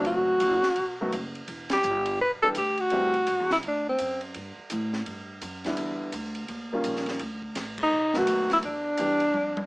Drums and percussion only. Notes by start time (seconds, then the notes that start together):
0.05 ride
0.40 hi-hat pedal, ride
0.63 snare
0.76 ride
1.12 hi-hat pedal, ride
1.35 ride
1.48 ride
1.70 snare, ride
1.83 hi-hat pedal
2.06 ride
2.55 hi-hat pedal, ride
2.78 ride
2.90 ride
3.14 ride
3.27 hi-hat pedal, ride
3.50 snare
3.63 ride
3.98 hi-hat pedal, ride
4.21 ride
4.34 ride
4.70 hi-hat pedal, ride
4.93 snare
5.06 ride
5.42 hi-hat pedal, ride
5.64 snare, ride
5.77 ride
6.12 hi-hat pedal, ride
6.35 ride
6.48 ride
6.84 hi-hat pedal, ride
6.96 snare
7.06 snare, ride
7.19 ride
7.42 kick
7.55 snare, hi-hat pedal, ride
7.78 kick, crash
8.14 snare
8.27 hi-hat pedal, ride
8.50 snare, ride
8.63 ride
8.97 hi-hat pedal, ride
9.20 ride
9.34 high tom
9.57 high tom